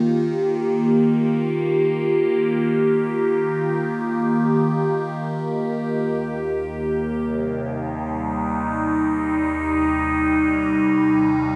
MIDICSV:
0, 0, Header, 1, 2, 480
1, 0, Start_track
1, 0, Key_signature, -3, "major"
1, 0, Tempo, 500000
1, 11095, End_track
2, 0, Start_track
2, 0, Title_t, "Ambient pad"
2, 0, Program_c, 0, 92
2, 0, Note_on_c, 0, 51, 75
2, 0, Note_on_c, 0, 58, 84
2, 0, Note_on_c, 0, 65, 67
2, 0, Note_on_c, 0, 67, 68
2, 5793, Note_on_c, 0, 39, 78
2, 5798, Note_off_c, 0, 65, 0
2, 5805, Note_off_c, 0, 51, 0
2, 6697, Note_on_c, 0, 48, 69
2, 6850, Note_on_c, 0, 55, 82
2, 6921, Note_on_c, 0, 63, 78
2, 6963, Note_off_c, 0, 67, 0
2, 8384, Note_off_c, 0, 58, 0
2, 11095, Note_off_c, 0, 39, 0
2, 11095, Note_off_c, 0, 48, 0
2, 11095, Note_off_c, 0, 55, 0
2, 11095, Note_off_c, 0, 63, 0
2, 11095, End_track
0, 0, End_of_file